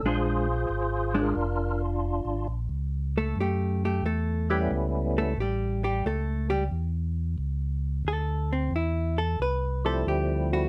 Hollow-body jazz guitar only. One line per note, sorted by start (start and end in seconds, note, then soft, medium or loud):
0.06 0.46 G#3 medium
0.06 0.46 D4 medium
1.14 1.34 G#3 medium
1.14 1.34 D4 medium
3.18 3.37 A3 medium
3.18 3.37 A4 medium
3.40 3.84 A3 medium
3.40 3.84 G4 medium
3.85 4.04 A3 medium
3.85 4.04 G4 medium
4.05 4.50 A3 medium
4.05 4.50 A4 medium
4.50 4.71 G3 medium
4.50 4.71 G4 medium
5.18 5.38 A3 medium
5.18 5.38 A4 medium
5.40 5.83 G3 medium
5.40 5.83 G4 medium
5.84 6.04 G3 medium
5.84 6.04 G4 medium
6.06 6.50 A3 medium
6.06 6.49 A4 medium
6.50 6.63 G3 medium
6.50 6.63 G4 medium
8.08 8.52 A4 medium
8.53 8.72 C4 medium
8.76 9.19 E4 medium
9.18 9.39 A4 medium
9.42 9.85 B4 medium
9.86 10.06 A4 medium
10.08 10.52 G4 medium
10.53 10.69 F#4 medium